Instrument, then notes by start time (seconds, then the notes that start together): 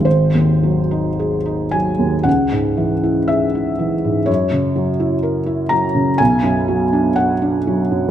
felt piano
0.00 G#1
0.05 C5
0.35 D#2
0.63 F#3
0.91 D#4
1.19 G#4
1.46 D#4
1.71 F#3 G#5
1.99 D#2
2.23 C#2 F#5
2.51 G#2
2.77 E3
3.03 E4
3.28 G#4 E5
3.55 E4
3.79 E3
4.05 G#2
4.26 F#2 C#5
4.52 C#3
4.76 F#3
5.00 E4
5.23 A#4
5.46 E4
5.69 F#3 A#5
5.95 C#3
6.18 B1 G#5
6.43 F#2
6.68 F#3
6.93 D4
7.16 F#4 F#5
7.42 D4
7.67 F#3
7.91 F#2